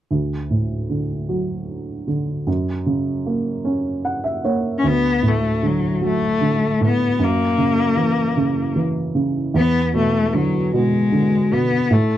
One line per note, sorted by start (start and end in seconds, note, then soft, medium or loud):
0.11 2.43 D2 soft
0.51 2.04 A2 soft
0.90 2.06 D3 soft
1.29 2.44 F#3 soft
2.08 2.46 D3 soft
2.47 4.79 F#2 soft
2.86 4.40 C#3 soft
3.26 4.43 A#3 soft
3.65 4.79 C#4 soft
4.05 4.23 F#5 soft
4.24 4.42 E5 soft
4.44 4.82 A#3 soft
4.44 4.81 C#5 soft
4.78 4.88 C#4 medium
4.84 7.15 D2 soft
4.84 5.29 B3 medium
5.23 6.76 A2 soft
5.28 5.68 A3 medium
5.63 6.40 D3 soft
5.63 6.03 F#3 medium
6.01 7.16 F#3 soft
6.06 6.78 A3 medium
6.41 7.17 D3 soft
6.81 7.18 A2 soft
6.85 7.25 B3 medium
7.19 9.51 F#2 medium
7.24 8.79 A#3 medium
7.58 8.35 C#3 soft
7.97 8.74 E3 soft
8.37 9.13 C#3 soft
8.76 9.52 E3 soft
9.15 9.53 C#3 soft
9.54 11.86 E2 soft
9.54 9.92 B3 medium
9.94 10.72 B2 soft
9.94 10.36 A3 medium
10.34 11.11 D3 soft
10.34 10.73 F#3 medium
10.73 11.50 B2 soft
10.73 11.55 G#3 medium
11.12 11.88 D3 soft
11.52 11.90 B2 soft
11.52 11.94 B3 medium
11.91 12.18 A2 medium
11.91 12.18 A3 medium